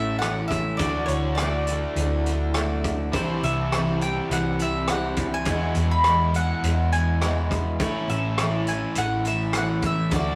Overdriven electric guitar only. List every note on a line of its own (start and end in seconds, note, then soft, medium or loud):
0.00 0.77 A2 medium
0.00 0.78 E3 medium
0.00 0.78 A3 medium
0.00 0.78 C#4 medium
0.00 0.79 A4 medium
0.79 3.10 D3 medium
0.79 3.11 A3 medium
0.79 3.12 D4 medium
0.79 3.12 F#4 medium
3.12 5.44 C3 medium
3.12 5.47 E3 medium
3.12 5.45 G3 medium
3.12 5.45 C4 medium
3.12 5.49 E4 medium
5.46 7.77 E2 medium
5.46 7.77 B2 medium
5.46 7.80 E3 medium
5.46 7.78 G#3 medium
5.46 7.79 B3 medium
5.46 7.82 E4 medium
7.79 10.10 A2 medium
7.79 10.10 E3 medium
7.79 10.11 A3 medium
7.79 10.12 C#4 medium
7.83 10.13 E4 medium
10.10 10.35 D3 medium
10.10 10.35 A3 medium
10.10 10.35 D4 medium
10.10 10.35 F#4 medium